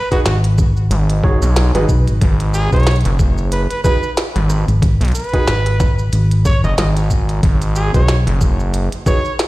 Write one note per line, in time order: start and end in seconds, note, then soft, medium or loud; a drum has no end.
0.12 0.20 D#4 loud
0.12 0.20 F#4 medium
0.12 0.21 F#4 medium
0.12 0.20 G#4 medium
0.12 0.20 B4 loud
0.12 kick medium
0.12 closed hi-hat soft
0.12 shaker soft
0.26 0.89 G#1 loud
0.26 0.38 F#4 medium
0.26 snare loud
0.26 closed hi-hat medium
0.26 shaker soft
0.44 closed hi-hat medium
0.44 shaker soft
0.58 kick loud
0.58 shaker medium
0.77 shaker soft
0.91 1.39 G#1 loud
0.91 closed hi-hat medium
0.91 shaker soft
1.10 closed hi-hat medium
1.10 shaker soft
1.24 1.70 D#4 medium
1.24 1.70 F#4 medium
1.24 1.70 G#4 medium
1.24 1.70 C#5 medium
1.24 kick loud
1.24 cross-stick soft
1.42 1.72 B1 medium
1.42 shaker medium
1.56 snare loud
1.56 closed hi-hat medium
1.56 shaker soft
1.75 1.87 G#1 loud
1.75 2.68 D#4 medium
1.75 2.68 F#4 medium
1.75 2.68 G#4 medium
1.75 2.68 B4 medium
1.75 closed hi-hat medium
1.75 shaker soft
1.89 2.04 B1 loud
1.89 kick medium
1.89 shaker medium
2.08 2.19 G#1 loud
2.08 closed hi-hat soft
2.08 shaker soft
2.21 2.70 G#1 loud
2.21 kick loud
2.21 closed hi-hat medium
2.21 shaker soft
2.40 closed hi-hat medium
2.40 shaker soft
2.54 2.69 G#4 loud
2.54 shaker medium
2.73 3.02 B1 loud
2.73 2.86 D#4 medium
2.73 2.86 F#4 medium
2.73 2.86 G#4 medium
2.73 2.86 B4 medium
2.73 2.98 C#5 loud
2.73 kick medium
2.73 closed hi-hat soft
2.73 shaker soft
2.76 closed hi-hat soft
2.80 closed hi-hat soft
2.83 snare loud
2.83 closed hi-hat soft
2.87 closed hi-hat medium
2.87 shaker soft
2.91 closed hi-hat soft
2.96 closed hi-hat soft
3.01 closed hi-hat soft
3.05 3.67 F#1 loud
3.05 closed hi-hat medium
3.05 shaker soft
3.19 kick loud
3.19 shaker medium
3.38 shaker soft
3.52 3.64 B4 medium
3.52 closed hi-hat medium
3.52 shaker soft
3.70 3.79 B4 medium
3.70 closed hi-hat medium
3.70 shaker soft
3.84 3.95 D#4 medium
3.84 3.95 F#4 medium
3.84 3.95 G#4 medium
3.84 4.11 B4 loud
3.84 3.95 B4 loud
3.84 kick loud
3.84 cross-stick soft
3.84 shaker medium
4.03 shaker soft
4.17 snare loud
4.17 closed hi-hat medium
4.17 shaker soft
4.36 4.65 G#1 loud
4.36 cross-stick soft
4.36 closed hi-hat medium
4.36 shaker soft
4.50 cross-stick medium
4.50 shaker medium
4.68 4.98 G#1 loud
4.68 closed hi-hat soft
4.68 shaker soft
4.82 kick loud
4.82 closed hi-hat medium
4.82 shaker soft
5.01 5.13 B1 loud
5.01 closed hi-hat medium
5.01 shaker soft
5.05 closed hi-hat soft
5.08 closed hi-hat soft
5.12 closed hi-hat soft
5.15 6.07 B4 loud
5.15 closed hi-hat soft
5.15 shaker medium
5.20 closed hi-hat soft
5.24 closed hi-hat soft
5.29 closed hi-hat soft
5.33 5.42 D#4 loud
5.33 5.42 F#4 medium
5.33 5.42 G#4 medium
5.33 5.42 B4 loud
5.33 kick medium
5.33 closed hi-hat soft
5.47 6.10 G#1 medium
5.47 snare loud
5.47 closed hi-hat medium
5.47 shaker soft
5.66 cross-stick soft
5.66 closed hi-hat medium
5.66 shaker soft
5.80 kick loud
5.80 snare medium
5.80 shaker medium
5.99 shaker soft
6.13 6.61 G#1 loud
6.13 closed hi-hat medium
6.13 shaker soft
6.31 closed hi-hat medium
6.31 shaker soft
6.45 6.60 C#5 loud
6.45 kick loud
6.45 cross-stick soft
6.45 shaker medium
6.64 6.76 F#1 loud
6.64 6.73 D#5 medium
6.64 shaker soft
6.78 7.41 G#1 loud
6.78 6.90 D#5 medium
6.78 snare loud
6.78 closed hi-hat medium
6.78 shaker soft
6.97 closed hi-hat medium
6.97 shaker soft
6.99 shaker soft
7.04 shaker soft
7.06 shaker soft
7.08 shaker soft
7.10 kick medium
7.10 shaker medium
7.29 closed hi-hat soft
7.29 shaker soft
7.43 7.91 G#1 medium
7.43 kick loud
7.43 closed hi-hat medium
7.62 closed hi-hat medium
7.62 shaker soft
7.76 7.91 G#4 loud
7.76 shaker medium
7.94 8.24 B1 loud
7.94 8.08 D#4 medium
7.94 8.07 F#4 medium
7.94 8.07 G#4 medium
7.94 8.08 B4 medium
7.94 8.19 C#5 loud
7.94 kick medium
7.94 closed hi-hat soft
7.94 shaker soft
8.08 snare loud
8.08 closed hi-hat medium
8.08 shaker soft
8.27 8.89 F#1 loud
8.27 closed hi-hat medium
8.27 shaker soft
8.41 kick loud
8.41 shaker medium
8.60 shaker soft
8.74 closed hi-hat medium
8.74 shaker soft
8.92 closed hi-hat medium
8.92 shaker soft
9.06 9.17 D#4 medium
9.06 9.17 F#4 medium
9.06 9.17 G#4 medium
9.06 9.17 B4 medium
9.06 9.33 C#5 medium
9.06 kick loud
9.06 cross-stick soft
9.06 shaker medium
9.25 shaker soft
9.39 snare loud
9.39 closed hi-hat medium
9.39 shaker soft